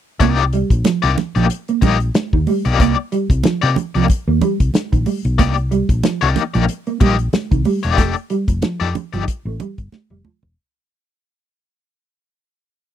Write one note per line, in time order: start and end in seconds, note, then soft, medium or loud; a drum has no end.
0.20 0.62 C2 medium
0.20 0.42 A#3 medium
0.20 0.35 A#3 medium
0.20 0.42 D#4 medium
0.20 0.42 G4 medium
0.20 0.42 D5 medium
0.20 kick loud
0.20 closed hi-hat medium
0.20 muted conga medium
0.38 closed hi-hat soft
0.53 0.67 G3 medium
0.53 closed hi-hat medium
0.70 0.82 A#1 medium
0.70 muted clean electric guitar stroke soft
0.70 kick loud
0.70 closed hi-hat medium
0.84 1.00 F3 medium
0.84 snare medium
0.84 closed hi-hat medium
0.84 high conga medium
1.02 1.15 C2 medium
1.02 1.15 A#3 medium
1.02 1.15 D#4 medium
1.02 1.14 G4 medium
1.02 1.14 D5 medium
1.02 closed hi-hat soft
1.18 muted clean electric guitar stroke soft
1.18 snare soft
1.18 closed hi-hat medium
1.18 muted conga medium
1.18 low conga medium
1.35 1.47 A#1 medium
1.35 1.47 F3 medium
1.35 1.45 A#3 soft
1.35 1.45 D#4 medium
1.35 1.45 G4 medium
1.35 1.44 D5 medium
1.35 closed hi-hat soft
1.50 muted clean electric guitar stroke soft
1.50 closed hi-hat medium
1.68 1.80 A#3 medium
1.68 closed hi-hat soft
1.82 2.09 A#1 medium
1.82 1.97 G3 medium
1.82 1.96 A#3 medium
1.82 1.97 D#4 medium
1.82 1.97 G4 medium
1.82 1.97 D#5 medium
1.82 kick loud
1.82 closed hi-hat medium
1.82 muted conga medium
1.82 low conga medium
2.00 closed hi-hat medium
2.14 muted fingered electric bass stroke soft
2.14 muted clean electric guitar stroke soft
2.14 snare loud
2.14 closed hi-hat medium
2.14 high conga medium
2.33 2.45 D#2 medium
2.33 2.44 D#3 medium
2.33 kick medium
2.47 2.62 G3 medium
2.47 open hi-hat medium
2.47 high conga medium
2.65 2.80 B1 medium
2.65 2.77 A#3 medium
2.65 2.77 D#4 medium
2.65 2.77 G4 medium
2.65 2.77 D5 medium
2.65 closed hi-hat medium
2.79 2.95 C2 medium
2.79 2.94 A#3 medium
2.79 2.94 D#4 medium
2.79 2.95 G4 medium
2.79 2.95 D5 medium
2.79 kick loud
2.79 closed hi-hat medium
2.79 muted conga medium
3.12 3.26 G3 medium
3.12 closed hi-hat medium
3.30 3.42 C2 loud
3.30 muted clean electric guitar stroke soft
3.30 kick loud
3.30 closed hi-hat medium
3.44 3.59 F3 medium
3.44 muted fingered electric bass stroke medium
3.44 snare loud
3.44 closed hi-hat medium
3.44 high conga medium
3.62 3.75 C3 medium
3.62 3.74 A#3 medium
3.62 3.74 D#4 medium
3.62 3.74 G4 medium
3.62 3.73 D5 medium
3.76 muted clean electric guitar stroke medium
3.76 closed hi-hat medium
3.76 muted conga medium
3.76 low conga medium
3.95 4.07 C2 medium
3.95 4.07 F3 medium
3.95 4.04 A#3 soft
3.95 4.04 D#4 medium
3.95 4.04 G4 medium
3.95 4.04 D5 medium
3.95 closed hi-hat soft
4.08 muted fingered electric bass stroke soft
4.08 muted clean electric guitar stroke soft
4.08 kick medium
4.08 closed hi-hat medium
4.08 muted conga soft
4.28 4.39 D#2 medium
4.28 4.39 A#3 medium
4.41 4.56 G3 medium
4.41 closed hi-hat medium
4.41 muted conga medium
4.41 low conga medium
4.60 4.72 C2 medium
4.60 kick medium
4.60 closed hi-hat medium
4.74 muted clean electric guitar stroke soft
4.74 snare loud
4.74 closed hi-hat medium
4.74 high conga medium
4.92 5.04 A#1 medium
4.92 5.03 D#3 medium
4.92 kick medium
4.92 closed hi-hat soft
5.06 5.21 G3 medium
5.06 open hi-hat medium
5.06 high conga medium
5.25 5.39 B1 medium
5.25 closed hi-hat medium
5.39 5.81 C2 medium
5.39 5.53 A#3 medium
5.39 5.53 D#4 medium
5.39 5.54 G4 loud
5.39 5.54 D5 medium
5.39 kick loud
5.39 closed hi-hat medium
5.39 muted conga medium
5.57 closed hi-hat soft
5.71 5.85 G3 medium
5.71 closed hi-hat medium
5.89 6.01 A#1 medium
5.89 muted clean electric guitar stroke soft
5.89 kick loud
5.89 closed hi-hat medium
6.03 6.18 F3 medium
6.03 snare medium
6.03 closed hi-hat medium
6.03 high conga medium
6.21 6.34 C2 medium
6.21 6.41 A#3 medium
6.21 6.41 D#4 medium
6.21 6.41 G4 medium
6.21 6.40 D5 medium
6.21 closed hi-hat soft
6.36 muted clean electric guitar stroke medium
6.36 snare soft
6.36 closed hi-hat medium
6.36 muted conga medium
6.36 low conga medium
6.54 6.66 A#1 loud
6.54 6.66 F3 medium
6.54 6.64 A#3 soft
6.54 6.63 D#4 medium
6.54 6.63 G4 soft
6.54 6.63 D5 medium
6.54 closed hi-hat soft
6.69 muted clean electric guitar stroke soft
6.69 closed hi-hat medium
6.87 6.98 A#3 medium
6.87 closed hi-hat soft
7.00 7.28 A#1 medium
7.00 7.15 G3 medium
7.00 7.15 A#3 medium
7.00 7.15 D#4 medium
7.00 7.16 G4 medium
7.00 7.16 D#5 medium
7.00 kick loud
7.00 closed hi-hat medium
7.00 muted conga medium
7.00 low conga medium
7.19 closed hi-hat soft
7.33 muted clean electric guitar stroke soft
7.33 muted fingered electric bass stroke soft
7.33 snare loud
7.33 closed hi-hat medium
7.33 high conga medium
7.51 7.63 C2 medium
7.51 7.62 D#3 medium
7.51 kick loud
7.51 closed hi-hat soft
7.65 7.80 G3 medium
7.65 open hi-hat medium
7.65 high conga medium
7.83 7.98 E1 medium
7.83 7.97 A#3 medium
7.83 7.96 D#4 medium
7.83 7.96 G4 medium
7.83 7.98 D5 medium
7.83 closed hi-hat medium
7.97 8.13 F1 medium
7.97 8.12 A3 medium
7.97 8.12 D#4 medium
7.97 8.12 G4 loud
7.97 8.13 A4 medium
7.97 8.13 D5 medium
7.97 kick loud
7.97 closed hi-hat medium
7.97 muted conga medium
8.16 closed hi-hat soft
8.30 8.45 G3 medium
8.30 closed hi-hat medium
8.48 8.60 F1 loud
8.48 muted clean electric guitar stroke soft
8.48 kick loud
8.48 closed hi-hat medium
8.62 8.77 F3 medium
8.62 snare medium
8.62 closed hi-hat medium
8.62 high conga medium
8.80 8.93 F2 loud
8.80 8.92 D#4 medium
8.80 8.92 G4 medium
8.80 8.92 A4 medium
8.80 8.92 D5 medium
8.95 muted clean electric guitar stroke soft
8.95 closed hi-hat medium
8.95 muted conga medium
8.95 low conga medium
9.13 9.25 G1 medium
9.13 9.25 F3 medium
9.13 9.23 D#4 soft
9.13 9.22 G4 medium
9.13 9.22 A4 medium
9.13 9.22 D5 medium
9.13 closed hi-hat soft
9.28 muted clean electric guitar stroke soft
9.28 kick medium
9.28 closed hi-hat medium
9.45 9.57 A1 medium
9.45 9.57 A3 medium
9.60 9.75 G3 medium
9.60 closed hi-hat medium
9.60 muted conga medium
9.60 low conga medium
9.78 9.90 G1 medium
9.78 kick medium
9.78 closed hi-hat medium
9.92 muted clean electric guitar stroke soft
9.92 snare medium
9.92 high conga medium
10.10 10.22 F1 medium
10.10 10.22 G3 medium
10.10 high tom medium
10.25 10.39 F3 medium
10.25 mid tom medium
10.25 high conga medium
10.43 10.54 E1 medium
10.43 floor tom medium